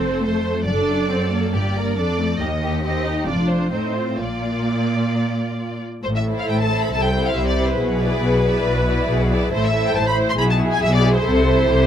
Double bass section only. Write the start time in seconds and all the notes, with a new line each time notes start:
Already playing: F1
0.67 F#1
1.54 G1
2.40 D#2
3.27 F1
4.18 A#1
6.04 A1
6.49 A1
6.92 C2
7.36 C2
7.79 B1
8.23 B1
8.66 B1
9.09 B1
9.53 A1
9.96 A1
10.39 B1
10.82 B1
11.25 C2
11.67 C2